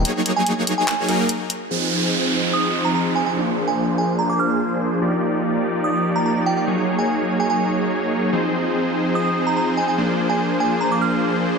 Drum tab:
HH |xxxxxxxx|--------|--------|--------|
CP |----x---|--------|--------|--------|

HH |--------|--------|--------|
CP |--------|--------|--------|